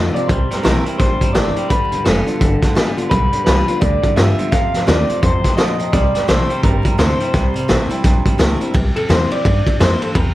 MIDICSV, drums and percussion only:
0, 0, Header, 1, 2, 480
1, 0, Start_track
1, 0, Tempo, 352113
1, 401, Time_signature, 4, 2, 24, 8
1, 14095, End_track
2, 0, Start_track
2, 0, Title_t, "Drums"
2, 216, Note_on_c, 9, 42, 55
2, 352, Note_off_c, 9, 42, 0
2, 398, Note_on_c, 9, 36, 112
2, 401, Note_on_c, 9, 42, 82
2, 535, Note_off_c, 9, 36, 0
2, 537, Note_off_c, 9, 42, 0
2, 696, Note_on_c, 9, 38, 31
2, 696, Note_on_c, 9, 42, 58
2, 833, Note_off_c, 9, 38, 0
2, 833, Note_off_c, 9, 42, 0
2, 879, Note_on_c, 9, 38, 115
2, 879, Note_on_c, 9, 42, 80
2, 1015, Note_off_c, 9, 38, 0
2, 1015, Note_off_c, 9, 42, 0
2, 1174, Note_on_c, 9, 42, 60
2, 1311, Note_off_c, 9, 42, 0
2, 1358, Note_on_c, 9, 38, 34
2, 1358, Note_on_c, 9, 42, 86
2, 1359, Note_on_c, 9, 36, 110
2, 1494, Note_off_c, 9, 38, 0
2, 1494, Note_off_c, 9, 42, 0
2, 1495, Note_off_c, 9, 36, 0
2, 1654, Note_on_c, 9, 36, 76
2, 1654, Note_on_c, 9, 42, 64
2, 1790, Note_off_c, 9, 36, 0
2, 1790, Note_off_c, 9, 42, 0
2, 1840, Note_on_c, 9, 38, 109
2, 1840, Note_on_c, 9, 42, 88
2, 1976, Note_off_c, 9, 38, 0
2, 1976, Note_off_c, 9, 42, 0
2, 2132, Note_on_c, 9, 42, 59
2, 2268, Note_off_c, 9, 42, 0
2, 2319, Note_on_c, 9, 42, 90
2, 2322, Note_on_c, 9, 36, 118
2, 2455, Note_off_c, 9, 42, 0
2, 2458, Note_off_c, 9, 36, 0
2, 2615, Note_on_c, 9, 42, 67
2, 2752, Note_off_c, 9, 42, 0
2, 2798, Note_on_c, 9, 38, 114
2, 2798, Note_on_c, 9, 42, 95
2, 2935, Note_off_c, 9, 38, 0
2, 2935, Note_off_c, 9, 42, 0
2, 3097, Note_on_c, 9, 42, 64
2, 3233, Note_off_c, 9, 42, 0
2, 3285, Note_on_c, 9, 36, 114
2, 3287, Note_on_c, 9, 42, 92
2, 3421, Note_off_c, 9, 36, 0
2, 3423, Note_off_c, 9, 42, 0
2, 3579, Note_on_c, 9, 36, 80
2, 3580, Note_on_c, 9, 38, 33
2, 3580, Note_on_c, 9, 42, 66
2, 3715, Note_off_c, 9, 36, 0
2, 3717, Note_off_c, 9, 38, 0
2, 3717, Note_off_c, 9, 42, 0
2, 3767, Note_on_c, 9, 38, 113
2, 3767, Note_on_c, 9, 42, 90
2, 3904, Note_off_c, 9, 38, 0
2, 3904, Note_off_c, 9, 42, 0
2, 4062, Note_on_c, 9, 42, 58
2, 4198, Note_off_c, 9, 42, 0
2, 4243, Note_on_c, 9, 36, 115
2, 4243, Note_on_c, 9, 42, 84
2, 4379, Note_off_c, 9, 36, 0
2, 4379, Note_off_c, 9, 42, 0
2, 4535, Note_on_c, 9, 42, 60
2, 4671, Note_off_c, 9, 42, 0
2, 4721, Note_on_c, 9, 38, 108
2, 4721, Note_on_c, 9, 42, 80
2, 4858, Note_off_c, 9, 38, 0
2, 4858, Note_off_c, 9, 42, 0
2, 5016, Note_on_c, 9, 42, 60
2, 5152, Note_off_c, 9, 42, 0
2, 5203, Note_on_c, 9, 42, 85
2, 5204, Note_on_c, 9, 36, 111
2, 5340, Note_off_c, 9, 36, 0
2, 5340, Note_off_c, 9, 42, 0
2, 5498, Note_on_c, 9, 42, 62
2, 5499, Note_on_c, 9, 36, 80
2, 5635, Note_off_c, 9, 42, 0
2, 5636, Note_off_c, 9, 36, 0
2, 5686, Note_on_c, 9, 38, 113
2, 5686, Note_on_c, 9, 42, 80
2, 5822, Note_off_c, 9, 38, 0
2, 5822, Note_off_c, 9, 42, 0
2, 5981, Note_on_c, 9, 42, 60
2, 6117, Note_off_c, 9, 42, 0
2, 6167, Note_on_c, 9, 36, 116
2, 6168, Note_on_c, 9, 38, 34
2, 6168, Note_on_c, 9, 42, 83
2, 6304, Note_off_c, 9, 36, 0
2, 6304, Note_off_c, 9, 38, 0
2, 6304, Note_off_c, 9, 42, 0
2, 6465, Note_on_c, 9, 38, 32
2, 6465, Note_on_c, 9, 42, 64
2, 6601, Note_off_c, 9, 38, 0
2, 6601, Note_off_c, 9, 42, 0
2, 6650, Note_on_c, 9, 38, 120
2, 6650, Note_on_c, 9, 42, 91
2, 6786, Note_off_c, 9, 38, 0
2, 6786, Note_off_c, 9, 42, 0
2, 6946, Note_on_c, 9, 42, 66
2, 7082, Note_off_c, 9, 42, 0
2, 7127, Note_on_c, 9, 42, 92
2, 7128, Note_on_c, 9, 36, 115
2, 7264, Note_off_c, 9, 36, 0
2, 7264, Note_off_c, 9, 42, 0
2, 7421, Note_on_c, 9, 36, 77
2, 7424, Note_on_c, 9, 38, 32
2, 7424, Note_on_c, 9, 42, 68
2, 7557, Note_off_c, 9, 36, 0
2, 7560, Note_off_c, 9, 38, 0
2, 7560, Note_off_c, 9, 42, 0
2, 7608, Note_on_c, 9, 38, 111
2, 7608, Note_on_c, 9, 42, 84
2, 7745, Note_off_c, 9, 38, 0
2, 7745, Note_off_c, 9, 42, 0
2, 7898, Note_on_c, 9, 42, 62
2, 8034, Note_off_c, 9, 42, 0
2, 8083, Note_on_c, 9, 38, 34
2, 8083, Note_on_c, 9, 42, 88
2, 8086, Note_on_c, 9, 36, 114
2, 8219, Note_off_c, 9, 38, 0
2, 8219, Note_off_c, 9, 42, 0
2, 8222, Note_off_c, 9, 36, 0
2, 8381, Note_on_c, 9, 38, 32
2, 8381, Note_on_c, 9, 42, 62
2, 8518, Note_off_c, 9, 38, 0
2, 8518, Note_off_c, 9, 42, 0
2, 8569, Note_on_c, 9, 38, 117
2, 8569, Note_on_c, 9, 42, 88
2, 8705, Note_off_c, 9, 38, 0
2, 8705, Note_off_c, 9, 42, 0
2, 8862, Note_on_c, 9, 42, 62
2, 8999, Note_off_c, 9, 42, 0
2, 9043, Note_on_c, 9, 42, 82
2, 9045, Note_on_c, 9, 36, 110
2, 9179, Note_off_c, 9, 42, 0
2, 9181, Note_off_c, 9, 36, 0
2, 9338, Note_on_c, 9, 42, 59
2, 9339, Note_on_c, 9, 36, 79
2, 9474, Note_off_c, 9, 42, 0
2, 9475, Note_off_c, 9, 36, 0
2, 9525, Note_on_c, 9, 38, 110
2, 9525, Note_on_c, 9, 42, 77
2, 9661, Note_off_c, 9, 38, 0
2, 9661, Note_off_c, 9, 42, 0
2, 9818, Note_on_c, 9, 42, 60
2, 9954, Note_off_c, 9, 42, 0
2, 10003, Note_on_c, 9, 38, 36
2, 10003, Note_on_c, 9, 42, 83
2, 10004, Note_on_c, 9, 36, 111
2, 10139, Note_off_c, 9, 38, 0
2, 10139, Note_off_c, 9, 42, 0
2, 10140, Note_off_c, 9, 36, 0
2, 10296, Note_on_c, 9, 42, 61
2, 10432, Note_off_c, 9, 42, 0
2, 10480, Note_on_c, 9, 38, 111
2, 10480, Note_on_c, 9, 42, 91
2, 10616, Note_off_c, 9, 38, 0
2, 10616, Note_off_c, 9, 42, 0
2, 10773, Note_on_c, 9, 42, 63
2, 10910, Note_off_c, 9, 42, 0
2, 10960, Note_on_c, 9, 38, 34
2, 10960, Note_on_c, 9, 42, 93
2, 10962, Note_on_c, 9, 36, 112
2, 11096, Note_off_c, 9, 38, 0
2, 11096, Note_off_c, 9, 42, 0
2, 11099, Note_off_c, 9, 36, 0
2, 11256, Note_on_c, 9, 36, 80
2, 11257, Note_on_c, 9, 42, 67
2, 11392, Note_off_c, 9, 36, 0
2, 11394, Note_off_c, 9, 42, 0
2, 11440, Note_on_c, 9, 38, 109
2, 11440, Note_on_c, 9, 42, 90
2, 11577, Note_off_c, 9, 38, 0
2, 11577, Note_off_c, 9, 42, 0
2, 11736, Note_on_c, 9, 42, 65
2, 11872, Note_off_c, 9, 42, 0
2, 11922, Note_on_c, 9, 36, 118
2, 11922, Note_on_c, 9, 51, 87
2, 12058, Note_off_c, 9, 36, 0
2, 12058, Note_off_c, 9, 51, 0
2, 12217, Note_on_c, 9, 51, 64
2, 12353, Note_off_c, 9, 51, 0
2, 12403, Note_on_c, 9, 38, 119
2, 12403, Note_on_c, 9, 51, 82
2, 12539, Note_off_c, 9, 38, 0
2, 12539, Note_off_c, 9, 51, 0
2, 12695, Note_on_c, 9, 51, 62
2, 12832, Note_off_c, 9, 51, 0
2, 12882, Note_on_c, 9, 36, 113
2, 12886, Note_on_c, 9, 51, 84
2, 13018, Note_off_c, 9, 36, 0
2, 13022, Note_off_c, 9, 51, 0
2, 13176, Note_on_c, 9, 36, 84
2, 13180, Note_on_c, 9, 51, 62
2, 13312, Note_off_c, 9, 36, 0
2, 13317, Note_off_c, 9, 51, 0
2, 13365, Note_on_c, 9, 38, 110
2, 13365, Note_on_c, 9, 51, 76
2, 13501, Note_off_c, 9, 38, 0
2, 13501, Note_off_c, 9, 51, 0
2, 13658, Note_on_c, 9, 51, 61
2, 13794, Note_off_c, 9, 51, 0
2, 13839, Note_on_c, 9, 51, 90
2, 13840, Note_on_c, 9, 36, 116
2, 13975, Note_off_c, 9, 51, 0
2, 13976, Note_off_c, 9, 36, 0
2, 14095, End_track
0, 0, End_of_file